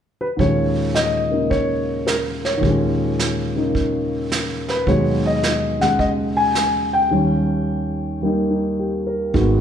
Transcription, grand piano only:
0.21 B4
0.37 D#2 A#2 G#3 C#5
0.42 C#4
0.95 D#5
1.30 C#3 A#3 D#4
1.50 C#5
2.07 A#4
2.45 C#5
2.58 D#2 A#2
2.65 G#3 C#4
3.55 C#3 A#3 D#4
4.69 B4
4.87 D#2 B2 F#3 G#3 C#5
5.26 D#5
5.80 C#3 G#3 F#5
5.99 D#5
6.37 G#5
6.93 G5
7.11 D#2 D#3 G3 C#4
8.22 G3 A#3 D#4
8.50 D#4
8.79 G4
9.07 A#4
9.34 D#3 G#3 B3 F#4

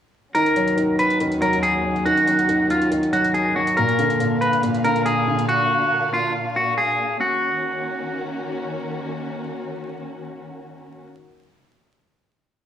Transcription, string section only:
0.35 D#2 D#3 C#4 F#4
3.78 A#2 A#3 D4 F5
7.20 D#3 A#3 C#4 F#4

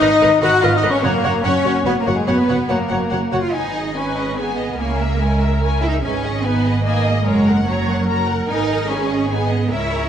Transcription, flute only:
Already playing: D#6
0.44 F#6
0.63 F6
0.77 D#6
0.90 C#6
1.05 A#5
1.46 C#6
1.86 B5
2.00 A#5
2.14 G#5
2.28 B5
2.69 A#5

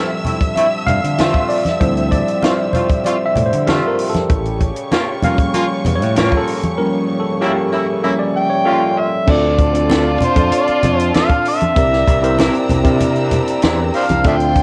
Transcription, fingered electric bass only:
0.89 G2
1.04 D3
1.81 D2
3.37 A2
3.53 D3
4.30 A1
5.87 E2
6.03 A2
9.28 D2
10.22 muted fingered electric bass stroke
10.36 F2
10.69 muted fingered electric bass stroke
10.84 F2
11.77 C2
12.08 C2
12.70 C2
12.85 C3
13.64 E2
14.10 C2
14.25 D2

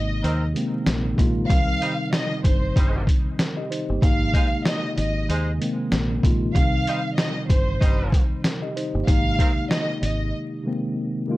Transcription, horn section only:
0.22 D#3 C4 A#4
1.81 G3 D#4 C5
2.75 G3 D#4 C5
4.33 G#3 D#4 C5
5.29 G#3 D#4 C5
6.87 G3 D#4 C5
7.81 G3 D#4 C5
9.39 D#3 C4 A#4

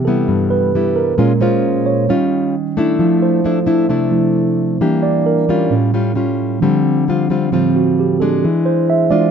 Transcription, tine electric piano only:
Already playing: C3 E3 B3 G4
0.05 A4
0.50 B4
0.96 A#4
1.18 A#2 G#3 C#4
1.41 C5
1.86 C#5
2.09 D#3 G3 C#4
2.99 F3 A3 E4
3.22 C5
3.47 A4
4.11 F3 A3 E4
4.80 E3 G3 D4
5.03 D5
5.26 A#4
5.70 A2 G3 C#4
6.60 D3 F3 C4
7.52 D3 F3 C4
7.76 F#4
8.00 G4
8.20 A4
8.44 G#4
8.66 C5
8.90 E5
9.10 E3 G#3 D4 D5

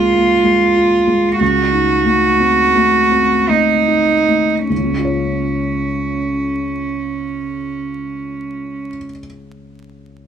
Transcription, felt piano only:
Already playing: C#2 G#3 A#3 F4
0.14 A#3
0.44 G#3
0.76 F4
1.07 G#3
1.40 C#2
1.73 D#4
2.05 A3
2.40 C4
2.76 A3
3.12 C4
3.49 A3
3.88 D#4
4.29 A3
4.70 C#2
4.77 C#3
4.84 G#3
4.91 C#4
4.98 F4
5.05 C#5

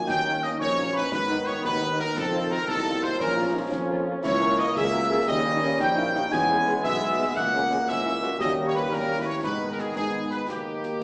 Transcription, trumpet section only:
0.09 G5
0.43 D#5
0.61 C#5
0.96 B4
1.13 B4
1.45 C#5
1.64 B4
1.99 A#4
2.16 A4
2.52 A#4
2.69 A4
3.03 C5
3.20 A#4
4.24 C#5
4.58 D#5
4.76 E5
5.27 D#5
5.80 G5
6.31 G#5
6.83 E5
7.35 F#5
7.88 E5
8.39 D#5
8.67 C#5
8.75 B4
8.94 A#4
9.19 B4
9.28 C#5
9.44 B4
9.70 A#4
9.80 G#4
9.97 G#4
10.31 B4
10.50 G4

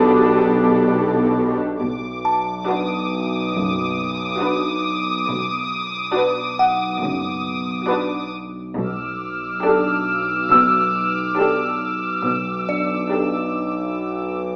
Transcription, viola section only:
Already playing: D4 G4
2.68 D4 F#4
4.40 D4 F#4
6.14 D4 F#4
7.89 D4 F#4
9.64 D4 G4
11.38 D4 G4
13.12 D4 G4

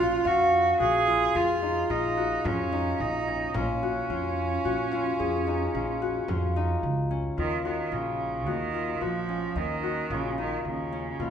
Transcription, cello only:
Already playing: F4
0.26 F#4
0.80 G#4
1.36 F4
1.90 D#4
2.46 C#4
3.00 D#4
3.56 C#4
7.38 D#3
7.64 D#3
7.92 C#3
8.47 D#3
9.01 F3
9.57 D#3
10.12 C#3
10.40 D#3
10.67 C#3
11.21 B2

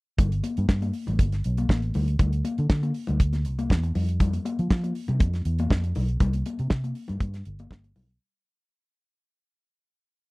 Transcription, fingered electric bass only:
0.19 G1
0.58 G2
0.69 G2
1.08 A1
1.19 G1
1.46 B1
1.69 A1
1.95 D2
2.20 D2
2.59 D3
2.70 D3
3.09 D2
3.20 D2
3.46 C2
3.70 E2
3.96 F2
4.59 F3
4.71 F3
5.09 C3
5.21 F2
5.45 E2
5.71 F2
5.96 B1
6.20 C2
6.59 C3
6.71 C3
7.09 G2
7.21 G2
7.47 G1
7.71 G1
7.96 B1

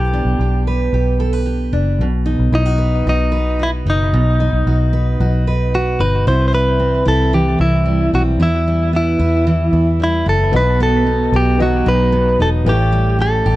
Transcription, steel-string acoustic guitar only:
Already playing: B3
0.13 D4
0.41 G4
0.67 B4
0.94 G4
1.20 A4
1.33 B4
1.46 G4
1.73 D4
2.01 B2
2.26 D#4
2.52 E4
2.66 F#4
2.78 B4
3.07 F#4
3.32 B4
3.59 F#4
3.86 D#4
4.14 B2
4.40 D#4
4.67 F#4
4.93 B4
5.20 F#4
5.47 B4
5.74 F#4
6.00 D#4
6.27 C3 E4
6.53 G3
6.80 C4
7.06 E4
7.33 E3
7.59 C4
7.86 G3
8.14 C4
8.40 E2 E4
8.68 G3
8.93 B3
9.19 E4
9.47 E3
9.73 B3
10.00 G3
10.26 B3
10.53 B2 F#4
10.80 B3
11.06 D#4
11.34 F#4
11.60 F#3
11.86 D#4
12.12 B3
12.40 D#4
12.66 A2 G4
12.92 G3
13.19 C#4
13.46 G4

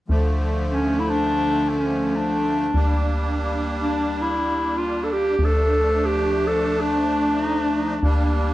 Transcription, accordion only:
0.08 D3 F3 A3
2.73 G3 A#3 D4
5.39 F3 A3 D4
8.02 G3 A#3 D4

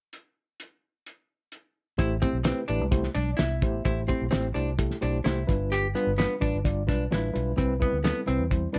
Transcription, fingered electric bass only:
1.99 A1
2.33 B1
2.69 A1
2.81 C2
3.16 B1
3.40 C2
3.62 A1
3.86 A1
4.22 B1
4.34 A1
4.56 C2
5.03 B1
5.26 C2
5.49 G1
6.07 G1
6.42 A1
6.54 G1
6.89 B1
7.12 A1
7.36 B1
7.58 C2
7.93 D2
8.28 C2
8.39 E2

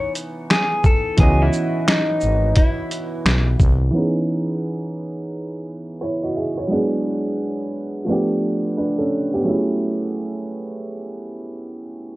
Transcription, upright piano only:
Already playing: E3 B3 C#4 D#4 G#5
1.17 E3 B3 C#4
1.22 F#4 D#5
3.91 E3 B3 C#4
3.96 D#4 G#4
6.01 E4 C#5
6.23 F#4 D#5
6.36 G#4 E5
6.57 E4 C#5
6.67 F#3 G#3 B3
6.71 D4 G#4
8.05 F3 A3 B3
8.10 D4 G4
8.77 D4 B4
8.98 C#4 A4
9.34 B3 G4
9.43 F#3 A3 C#4
9.48 E4 G#4

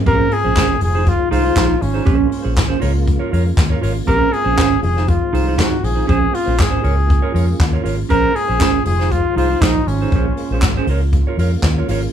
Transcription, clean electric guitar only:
0.06 C#4 G#4 C5
0.44 C#4 G#4 C5
0.55 C#4 G#4 C5
0.70 muted clean electric guitar stroke
0.81 muted clean electric guitar stroke
0.95 D#4 G#4 C5
1.06 muted clean electric guitar stroke
1.19 muted clean electric guitar stroke
1.31 D#4 G#4 C5
1.45 D#4 G#4 C5
1.56 D#4 G#4 C5
1.69 muted clean electric guitar stroke
1.81 muted clean electric guitar stroke
1.94 D#4 G#4 C5
2.05 C#4 G#4 C5
2.19 muted clean electric guitar stroke
2.30 muted clean electric guitar stroke
2.43 C#4 G#4 C5
2.55 muted clean electric guitar stroke
2.68 C#4 G#4 C5
2.80 F4 A#4 C#5
2.94 muted clean electric guitar stroke
3.06 muted clean electric guitar stroke
3.19 F4 A#4 C#5
3.32 F4 A#4 C#5
3.46 muted clean electric guitar stroke
3.58 muted clean electric guitar stroke
3.70 F4 A#4 C#5
3.82 F4 A#4 C#5
3.95 muted clean electric guitar stroke
4.07 C#4 G#4 C5
4.32 muted clean electric guitar stroke
4.44 C#4 G#4 C5
4.56 C#4 G#4 C5
4.71 muted clean electric guitar stroke
4.83 muted clean electric guitar stroke
4.97 D#4 G#4 C5
5.09 muted clean electric guitar stroke
5.21 muted clean electric guitar stroke
5.33 D#4 G#4 C5
5.47 D#4 G#4 C5
5.57 D#4 G#4 C5
5.71 muted clean electric guitar stroke
5.83 muted clean electric guitar stroke
5.95 D#4 G#4 C5
6.07 C#4 G#4 C5
6.21 muted clean electric guitar stroke
6.32 muted clean electric guitar stroke
6.46 C#4 G#4 C5
6.57 muted clean electric guitar stroke
6.70 C#4 G#4 C5
6.82 F4 A#4 C#5
6.97 muted clean electric guitar stroke
7.08 muted clean electric guitar stroke
7.22 F4 A#4 C#5
7.34 F4 A#4 C#5
7.47 muted clean electric guitar stroke
7.60 muted clean electric guitar stroke
7.73 F4 A#4 C#5
7.84 F4 A#4 C#5
7.97 muted clean electric guitar stroke
8.09 C#4 G#4 C5
8.35 muted clean electric guitar stroke
8.48 C#4 G#4 C5
8.60 C#4 G#4 C5
8.74 muted clean electric guitar stroke
8.85 muted clean electric guitar stroke
8.99 D#4 G#4 C5
9.12 muted clean electric guitar stroke
9.25 muted clean electric guitar stroke
9.36 D#4 G#4 C5
9.51 D#4 G#4 C5
9.61 D#4 G#4 C5
9.76 muted clean electric guitar stroke
9.88 muted clean electric guitar stroke
10.02 D#4 G#4 C5
10.14 C#4 G#4 C5
10.28 muted clean electric guitar stroke
10.40 muted clean electric guitar stroke
10.52 C#4 G#4 C5
10.77 C#4 G#4 C5
10.89 F4 A#4 C#5
11.03 muted clean electric guitar stroke
11.14 muted clean electric guitar stroke
11.27 F4 A#4 C#5
11.39 F4 A#4 C#5
11.52 muted clean electric guitar stroke
11.64 muted clean electric guitar stroke
11.78 F4 A#4 C#5
11.89 F4 A#4 C#5
12.03 muted clean electric guitar stroke

